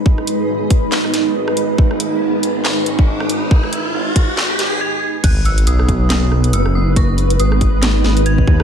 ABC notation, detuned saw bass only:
X:1
M:4/4
L:1/8
Q:"Swing 16ths" 1/4=139
K:G#m
V:1 name="Detuned saw bass" clef=bass
G,,,2 B,,,4 G,,,2 | G,,,4 G,,,2 G,,,2- | G,,,2 G,,,3 G,,, z2 | G,,,2 B,,,4 F,,,2- |
F,,,2 G,,,3 G,,,2 D,, |]